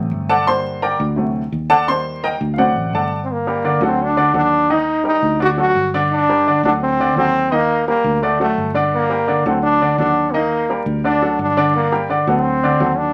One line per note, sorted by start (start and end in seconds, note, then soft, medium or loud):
0.00 0.10 A1 medium
0.00 0.43 C3 medium
0.00 0.44 F#3 medium
0.00 0.44 A3 medium
0.11 0.94 G1 medium
0.29 0.47 A4 medium
0.29 0.47 D5 medium
0.29 0.47 F#5 medium
0.29 0.47 A5 loud
0.47 1.14 D3 medium
0.47 1.15 G3 medium
0.47 1.15 A#3 medium
0.47 0.80 C5 medium
0.47 0.80 C6 loud
0.82 1.00 A#4 medium
0.82 1.00 D5 medium
0.82 1.00 G5 medium
0.82 0.99 A#5 medium
1.00 1.49 D2 loud
1.16 1.40 C3 medium
1.16 1.41 F#3 medium
1.16 1.41 A3 medium
1.52 2.35 D#2 medium
1.70 1.88 A4 medium
1.70 1.87 D5 medium
1.70 1.88 F#5 medium
1.70 1.87 A5 loud
1.88 2.38 D#3 medium
1.88 2.39 G3 medium
1.88 2.39 A#3 medium
1.88 2.21 C5 medium
1.88 2.21 C6 loud
2.24 2.34 A#4 medium
2.24 2.34 D#5 medium
2.24 2.35 G5 medium
2.24 2.34 A#5 loud
2.41 2.73 D2 loud
2.54 3.08 C3 medium
2.54 2.56 F5 medium
2.58 3.09 F#3 medium
2.58 3.09 A3 medium
2.58 2.91 F#4 medium
2.58 2.91 C5 medium
2.58 2.91 D5 medium
2.58 2.91 F#5 medium
2.76 2.92 A1 medium
2.93 3.76 G1 medium
2.93 3.19 A4 medium
2.93 3.19 D5 medium
2.93 3.19 F#5 medium
2.93 3.19 A5 medium
3.24 3.34 C4 medium
3.32 3.83 A#3 loud
3.47 3.61 G3 medium
3.47 3.61 G4 medium
3.47 3.61 A#4 medium
3.65 3.79 D3 medium
3.65 3.79 D4 medium
3.65 3.79 D5 medium
3.81 4.30 D2 loud
3.81 4.11 F#3 medium
3.81 4.11 F#4 medium
3.81 4.11 A4 medium
3.86 4.04 C4 loud
4.03 4.35 D4 loud
4.17 4.31 D3 medium
4.17 4.31 D4 medium
4.17 4.32 D5 medium
4.34 5.17 D#2 medium
4.34 4.63 F#3 medium
4.34 4.74 D4 loud
4.34 4.63 F#4 medium
4.34 4.63 A4 medium
4.70 4.99 D#3 medium
4.70 4.99 D#4 medium
4.70 5.06 D#4 loud
4.70 4.99 D#5 medium
5.04 5.33 G3 medium
5.04 5.39 D#4 loud
5.04 5.34 G4 medium
5.04 5.34 A#4 medium
5.22 5.72 D2 loud
5.40 5.55 D3 medium
5.40 5.55 D4 medium
5.40 5.50 F#4 loud
5.40 5.55 D5 medium
5.58 5.87 F#3 medium
5.58 5.87 F#4 medium
5.58 5.92 F#4 loud
5.58 5.87 A4 medium
5.75 6.58 G1 medium
5.94 6.23 D3 medium
5.94 6.23 D4 loud
5.94 6.23 D5 loud
6.12 6.61 D4 loud
6.29 6.43 G3 medium
6.29 6.44 G4 medium
6.29 6.44 A#4 medium
6.47 6.61 D3 medium
6.47 6.61 D4 medium
6.47 6.61 D5 medium
6.63 7.13 D2 loud
6.63 6.94 F#3 medium
6.63 6.73 D4 medium
6.63 6.94 F#4 medium
6.63 6.94 A4 medium
6.82 7.15 C4 loud
7.00 7.14 D3 medium
7.00 7.15 D4 medium
7.00 7.14 D5 medium
7.16 7.99 D#2 medium
7.16 7.46 F#3 medium
7.16 7.55 C4 loud
7.16 7.47 F#4 medium
7.16 7.46 A4 medium
7.52 7.81 D#3 medium
7.52 7.88 A#3 loud
7.52 7.81 D#4 medium
7.52 7.81 D#5 medium
7.88 8.16 G3 medium
7.88 8.26 A#3 medium
7.88 8.17 G4 medium
7.88 8.17 A#4 medium
8.04 8.54 D2 medium
8.22 8.37 D3 medium
8.22 8.41 A3 loud
8.22 8.37 D4 medium
8.22 8.37 D5 medium
8.40 8.69 F#3 medium
8.40 8.74 A3 medium
8.40 8.69 F#4 medium
8.40 8.69 A4 medium
8.58 9.40 G1 medium
8.74 9.04 D3 medium
8.74 9.04 D4 loud
8.74 9.04 D5 medium
8.94 9.43 A#3 loud
9.10 9.25 G3 medium
9.10 9.25 G4 medium
9.10 9.25 A#4 medium
9.28 9.42 D3 medium
9.28 9.42 D4 medium
9.28 9.43 D5 medium
9.46 9.95 D2 loud
9.46 9.75 F#3 medium
9.46 9.62 C4 medium
9.46 9.75 F#4 medium
9.46 9.75 A4 medium
9.62 9.96 D4 loud
9.82 9.96 D3 medium
9.82 9.96 D4 medium
9.82 9.96 D5 medium
9.98 10.81 D#2 medium
9.98 10.28 F#3 medium
9.98 10.34 D4 loud
9.98 10.28 F#4 medium
9.98 10.28 A4 medium
10.33 10.63 D#3 medium
10.33 10.86 A#3 loud
10.33 10.63 D#4 medium
10.33 10.63 D#5 medium
10.70 10.98 G3 medium
10.70 10.98 G4 medium
10.70 10.99 A#4 medium
10.86 11.36 D2 loud
11.04 11.19 D3 medium
11.04 11.37 D4 loud
11.04 11.19 D4 medium
11.04 11.19 D5 medium
11.22 11.51 F#3 medium
11.22 11.51 F#4 medium
11.22 11.51 A4 medium
11.39 12.22 G1 medium
11.39 11.73 D4 medium
11.57 11.86 D3 medium
11.57 11.86 D4 loud
11.57 11.86 D5 loud
11.76 12.08 A#3 loud
11.92 12.07 G3 medium
11.92 12.07 G4 medium
11.92 12.07 A#4 medium
12.10 12.24 D3 medium
12.10 12.25 D4 medium
12.10 12.25 D5 medium
12.27 12.77 D2 loud
12.27 12.57 F#3 medium
12.27 12.99 C4 loud
12.27 12.57 F#4 medium
12.27 12.57 A4 medium
12.63 12.78 D3 medium
12.63 12.78 D4 medium
12.63 12.78 D5 medium
12.80 13.13 D#2 medium
12.80 13.10 F#3 medium
12.80 13.10 F#4 medium
12.80 13.10 A4 medium
12.98 13.13 D4 loud